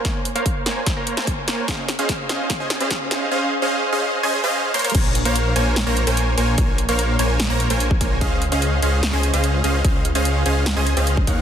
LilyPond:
<<
  \new Staff \with { instrumentName = "Supersaw synth" } { \time 4/4 \key bes \minor \tempo 4 = 147 <bes bes' c''>8 r16 <bes bes' c'' des'' f''>8. <bes bes' c'' des'' aes''>8. <bes bes' c'' des'' bes''>8 <bes bes' c'' des'' aes''>8. <bes bes' c'' des'' aes''>8 | aes'8 r16 <des' aes' c'' ees'' f''>8. <des' aes' c'' ees'' f''>8. <des' aes' c'' ees'' aes''>8 <des' aes' c'' ees'' f''>8. <des' aes' c'' ees'' f''>8 | <des' aes' c'' ees'' f''>8 r16 <des' aes' c'' ees'' f''>8. <des' aes' c'' ees'' f''>8. <des' aes' c'' ees'' aes''>8 <des' aes' c'' ees'' f''>8. <bes bes' c'' des'' c'''>16 <bes bes' c'' des'' f''>16 | <bes bes' c'' des'' aes''>8 r16 <bes bes' c'' des'' f''>8. <bes bes' c'' des'' aes''>8. <bes bes' c'' des'' bes''>8 <bes bes' c'' des'' aes''>8. <bes bes' c'' des'' aes''>8 |
r8. <bes bes' c'' des'' f''>8. <bes bes' c'' des'' aes''>8. <bes bes' c'' des'' bes''>8 <bes bes' c'' des'' aes''>8. <bes bes' c'' des'' aes''>8 | <des' aes' c'' ees'' f''>8 r16 <des' aes' c'' ees'' f''>8. <des' aes' c'' ees'' f''>8. <des' aes' c'' ees'' aes''>8 <des' aes' c'' ees'' f''>8. <des' aes' c'' ees'' f''>8 | <des' aes' c'' ees'' f''>8 r16 <des' aes' c'' ees'' f''>8. <des' aes' c'' ees'' f''>8. <des' aes' c'' ees'' aes''>8 <des' aes' c'' ees'' f''>8. <ees' bes' des'' f'' ges''>8 | }
  \new Staff \with { instrumentName = "Detuned saw bass" } { \clef bass \time 4/4 \key bes \minor r1 | r1 | r1 | bes,,8. bes,,8. bes,,8. bes,,8 bes,,8. bes,,8 |
bes,,8. bes,,8. bes,,8. bes,,8 bes,,8. bes,,8 | des,8. des,8. des,8. des,8 des,8. des,8 | des,8. des,8. des,8. des,8 des,8. ees,8 | }
  \new DrumStaff \with { instrumentName = "Drums" } \drummode { \time 4/4 <hh bd sn>8 hh16 hh16 <hh bd>8 <hh sn>8 <hh bd sn>8 hh16 <hh sn>16 <hh bd>8 <hh sn>8 | <hh bd sn>8 <hh sn>16 hh16 <hh bd sn>8 <hh sn>8 <hh bd sn>8 <hh sn>16 hh16 <hh bd sn>8 <hh sn>8 | r4 r4 r4 r8 hh32 hh32 hh32 hh32 | <cymc hh bd>8 hh16 hh16 hh8 hh8 <hh sn>8 hh16 hh16 hh8 hh8 |
<hh bd>8 hh16 hh16 hh8 hh8 <hh sn>8 hh16 hh16 hh16 bd16 <hh bd>8 | <hh bd>8 hh16 hh16 hh8 hh8 <hh sn>8 hh16 hh16 hh8 hh8 | <hh bd>8 hh16 hh16 hh8 hh8 <hh sn>8 hh16 hh16 hh16 bd16 <hh bd>8 | }
>>